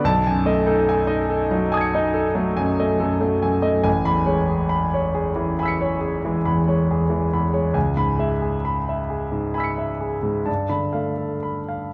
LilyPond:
<<
  \new Staff \with { instrumentName = "Grand piano" } { \time 9/8 \key b \dorian \tempo 4. = 46 << { a''8 r4. <a'' dis''' gis''' cis''''>2~ <a'' dis''' gis''' cis''''>8 | r16 b''8 r4 r16 <gis'' e''' b''' cis''''>2~ <gis'' e''' b''' cis''''>8 | r16 b''8 r4 r16 <gis'' e''' b''' cis''''>4 r16 b''8 r8. | } \\ { r16 gis''16 dis''16 a'16 gis''16 dis''16 a'16 fis16 gis''16 dis''16 a'16 fis16 gis''16 dis''16 a'16 fis16 gis''16 dis''16 | gis''8 cis''16 gis'16 b''16 cis''16 gis'16 e16 b''16 cis''16 gis'16 e16 b''16 cis''16 gis'16 e16 b''16 cis''16 | gis''8 e''16 gis'16 b''16 e''16 gis'16 gis,16 b''16 e''16 gis'16 gis,16 a''8 f''16 a'16 b''16 f''16 | } >> }
  \new Staff \with { instrumentName = "Grand piano" } { \clef bass \time 9/8 \key b \dorian b,,16 fis,16 a16 dis'8 dis'8 dis'8 dis'8 a16 fis,16 a16 fis,16 a16 fis,16 a16 | a,,16 e,16 gis8 r4. r16 gis16 e,16 gis16 e,16 gis16 e,16 gis16 | cis,16 gis,16 gis8 r4. r16 gis16 g,16 d16 a8 r8 | }
>>